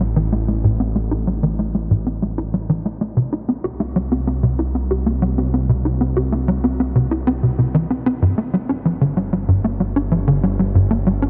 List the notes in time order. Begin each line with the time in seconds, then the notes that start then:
Already playing: A1
0.00 G3
0.16 E3
0.32 A3
0.48 A3
0.64 A2
0.80 C4
0.96 A3
1.11 E4
1.27 G3
1.43 E3
1.59 A3
1.75 A3
1.91 A2
2.07 C4
2.22 A3
2.38 E4
2.54 G3
2.69 E3
2.85 A3
3.01 A3
3.17 C2 C3
3.33 E4
3.49 C4
3.64 G4
3.80 A#3
3.96 G3
4.12 C4
4.27 C4
4.43 C3
4.59 E4
4.75 C4
4.91 G4
5.06 A#3
5.22 G3
5.38 C4
5.54 C4
5.69 C3
5.85 E4
6.01 C4
6.17 G4
6.32 A#3
6.48 G3
6.64 C4
6.80 C4
6.95 C3
7.11 E4
7.27 C4
7.43 C3
7.58 C3
7.74 E3
7.90 C4
8.06 C4
8.22 G1 G2
8.38 A#3
8.53 G3
8.69 D4
8.85 F3
9.01 D3
9.17 G3
9.33 G3
9.48 G2
9.64 A#3
9.80 G3
9.96 D4
10.12 F3
10.28 D3
10.43 G3
10.59 G3
10.75 G2
10.91 A#3
11.07 G3
11.22 D4